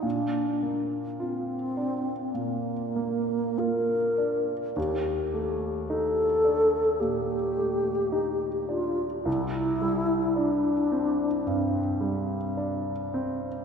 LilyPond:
<<
  \new Staff \with { instrumentName = "Alto flute" } { \time 4/4 \key bes \major \tempo 4 = 53 d'8. r16 c'4 bes4 bes'4 | g'4 a'4 g'4. f'8 | e'4 d'4 c'4 r4 | }
  \new Staff \with { instrumentName = "Grand piano" } { \time 4/4 \key bes \major bes,8 bes8 f'8 d'8 bes,8 bes8 f'8 d'8 | ees,8 a8 ees'8 d'8 bes,8 a8 ees'8 d'8 | c,8 g8 d'8 c'8 g,8 g8 d'8 c'8 | }
>>